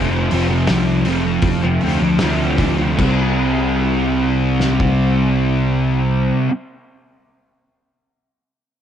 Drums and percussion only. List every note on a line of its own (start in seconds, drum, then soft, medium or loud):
0.31 open hi-hat medium
0.67 snare loud
0.67 open hi-hat medium
1.05 open hi-hat soft
1.42 kick loud
1.42 open hi-hat medium
1.81 open hi-hat medium
2.19 snare medium
2.19 open hi-hat medium
2.58 kick medium
2.58 snare soft
2.58 open hi-hat medium
2.99 kick loud
2.99 crash medium
4.60 snare soft
4.80 kick medium